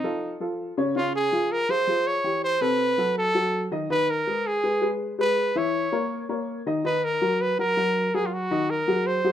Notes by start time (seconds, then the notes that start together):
Already playing: D#4
0.04 F3 F4 A4
0.40 F3 F4 A4
0.77 C#3 C#4 C#5
0.96 C#3 C#4 F4 C#5
1.16 G#4
1.32 F3 F4 G#4
1.52 A#4
1.69 F3 F4 G#4 C5
1.87 F3 F4 G#4
2.07 C#5
2.24 E3 E4 G4
2.44 C5
2.61 C3 C4 A4 B4
2.98 F#3 F#4 A4
3.18 A4
3.35 F#3 F#4 A4
3.72 D#3 D#4 D#5
3.90 D#3 D#4 B4 D#5
4.10 A#4
4.27 G#3 G#4 B4
4.47 G#4
4.63 G#3 G#4 B4
4.81 G#3 G#4 B4
5.18 G#3 G#4 B4
5.55 E3 E4 C#5 E5
5.92 A#3 A#4 C#5
6.29 A#3 A#4 C#5
6.66 D#3 D#4 D#5
6.84 D#3 D#4 B4 D#5
7.04 A#4
7.21 F#3 F#4 A#4
7.41 B4
7.59 F#3 F#4 A#4
7.77 F#3 F#4 A#4
8.14 F#3 F#4 G#4 A#4
8.26 F4
8.33 F#4
8.51 D#3 D#4 D#5
8.70 A#4
8.88 F#3 F#4 G#4
9.06 C5
9.24 F#3 F#4 G#4